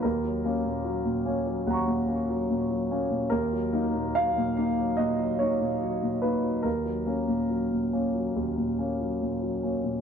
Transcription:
<<
  \new Staff \with { instrumentName = "Grand piano" } { \time 4/4 \key ges \major \tempo 4 = 72 << { r2 <ges'' bes'' des'''>2 | r1 | r1 | } \\ { bes'2.~ bes'8 r8 | bes'4 f''4 ees''8 des''4 ces''8 | bes'2.~ bes'8 r8 | } >> }
  \new Staff \with { instrumentName = "Grand piano" } { \clef bass \time 4/4 \key ges \major ees,16 ges16 <bes des'>16 bes,16 ges16 bes,16 <bes des'>16 ges16 ees,16 bes,16 <bes des'>16 ges16 bes,16 ges16 <bes des'>16 bes,16 | ees,16 ges16 <bes ees'>16 bes,16 ges16 bes,16 <bes ees'>16 ges16 bes,16 ges16 <bes ees'>16 bes,16 ges16 bes,16 <bes ees'>16 ges16 | ees,16 ges16 <bes des'>16 bes,16 ges16 bes,16 <bes des'>16 ges16 ees,16 bes,16 <bes des'>16 ges16 bes,16 ges16 <bes des'>16 bes,16 | }
>>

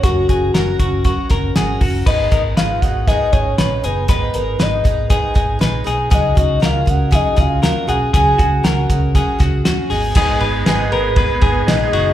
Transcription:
<<
  \new Staff \with { instrumentName = "Soft synth lead" } { \time 4/4 \key gis \dorian \tempo 4 = 119 fis'2.~ fis'8 r8 | dis''8 dis''8 eis''8 fis''8 dis''8 cis''4 b'8 | b'4 dis''4 r2 | dis''8 dis''8 eis''8 fis''8 dis''8 eis''4 fis''8 |
gis''4 fis''4 r2 | r4. b'4. dis''4 | }
  \new Staff \with { instrumentName = "Clean electric guitar" } { \time 4/4 \key gis \dorian fis'8 gis'8 ais'8 fis'8 fis'8 ais'8 gis'8 fis'8 | b'8 ais'8 b'4 gis'8 gis'8 b'8 gis'8 | b'8 ais'8 b'4 gis'8 gis'8 b'8 gis'8 | gis'8 fis'8 ais'4 gis'8 gis'8 ais'8 gis'8 |
gis'8 fis'8 ais'4 gis'8 fis'8 fis'8 gis'8 | gis'8 b'8 gis'8 ais'8 b'8 gis'4 fis'8 | }
  \new Staff \with { instrumentName = "Transistor combo organ" } { \time 4/4 \key gis \dorian r1 | r1 | r1 | r1 |
r1 | <gis b dis' gis'>1 | }
  \new Staff \with { instrumentName = "Twelve-string acoustic guitar" } { \time 4/4 \key gis \dorian <fis cis' fis' ais'>8 <cis' fis' ais'>8 <fis cis' fis' ais'>8 <cis' fis' ais'>8 <fis cis' fis' ais'>8 <cis' fis' ais'>8 <fis cis' fis' ais'>8 <cis' fis' ais'>8 | <gis, dis gis b dis' gis'>8 <gis b dis' gis'>8 <gis b dis' gis'>8 <gis b dis' gis'>8 <gis, dis gis b dis' gis'>8 <gis b dis' gis'>8 <gis b dis' gis'>8 <gis b dis' gis'>8 | <gis, dis gis b dis' gis'>8 <gis b dis' gis'>8 <gis b dis' gis'>8 <gis b dis' gis'>8 <gis, dis gis b dis' gis'>8 <gis b dis' gis'>8 <gis b dis' gis'>8 <gis b dis' gis'>8 | <cis fis cis' fis' gis'>8 <cis' fis' gis'>8 <fis cis' fis' gis'>8 <cis' fis' gis'>8 <cis fis cis' fis' gis'>8 <cis' fis' gis'>8 <fis cis' fis' gis'>8 <cis' fis' gis'>8 |
<cis fis cis' fis' gis'>8 <cis' fis' gis'>8 <fis cis' fis' gis'>8 <cis' fis' gis'>8 <cis fis cis' fis' gis'>8 <cis' fis' gis'>8 <fis cis' fis' gis'>8 <gis b dis' gis'>8 | <gis, dis gis b dis' gis'>8 <gis b dis' gis'>8 <gis, dis gis b dis' gis'>8 <gis b dis' gis'>8 <gis b dis' gis'>8 <gis b dis' gis'>8 <gis, dis gis b dis' gis'>8 <gis b dis' gis'>8 | }
  \new Staff \with { instrumentName = "Fingered electric bass" } { \clef bass \time 4/4 \key gis \dorian fis,,8 fis,,8 fis,,8 fis,,8. r16 fis,,8 gis,,8 fis,,8 | gis,,8 gis,,8 gis,,8 gis,,8. r16 gis,,8 ais,,8 fis,,8 | gis,,8 gis,,8 gis,,8 gis,,8. r16 gis,,8 ais,,8 b,,8 | cis,8 cis,8 cis,8 cis,8. r16 cis,8 dis,8 b,,8 |
cis,8 cis,8 cis,8 cis,8. r16 cis,8 dis,8 gis,,8 | gis,,8 gis,,8 gis,,8 gis,,8. r16 gis,,8 ais,,8 fis,,8 | }
  \new DrumStaff \with { instrumentName = "Drums" } \drummode { \time 4/4 <hh bd>8 <hh bd>8 <hh sn>8 <hh bd>8 <hh bd>8 <hh bd sn>8 <hh sn>8 <hho bd>8 | <cymc bd>8 <hh bd>8 <hh sn>8 <hh bd>8 <hh bd>8 <hh bd>8 <hh sn>8 hh8 | <hh bd>8 hh8 <hh sn>8 <hh bd>8 <hh bd>8 <hh bd>8 <hh sn>8 hh8 | <hh bd>8 <hh bd>8 <hh sn>8 <hh bd>8 <hh bd>8 <hh bd sn>8 <hh sn>8 hh8 |
<hh bd>8 <hh bd>8 <hh sn>8 <hh bd>8 <hh bd>8 <hh bd sn>8 <hh sn>8 hho8 | <cymc bd>8 cymr8 <cymr sn>8 cymr8 <bd cymr>8 <bd cymr>8 <cymr sn>8 cymr8 | }
>>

